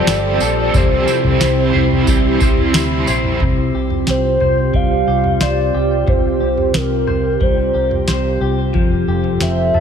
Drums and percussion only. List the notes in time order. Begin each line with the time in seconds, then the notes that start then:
0.07 snare, tambourine
0.40 tambourine
0.74 kick, floor tom, tambourine
1.08 tambourine
1.24 floor tom
1.41 snare, tambourine
1.74 floor tom
1.91 floor tom
2.07 kick, tambourine
2.40 kick, tambourine
2.58 floor tom
2.74 snare, tambourine
3.07 tambourine
3.24 floor tom
3.40 kick, floor tom
3.90 floor tom
4.07 snare
4.40 floor tom
4.74 kick, floor tom
5.24 floor tom
5.41 snare
6.08 kick, floor tom
6.58 floor tom
6.74 snare
7.07 floor tom
7.41 kick, floor tom
7.91 floor tom
8.08 snare
8.74 kick, floor tom
9.24 floor tom
9.40 snare
9.74 floor tom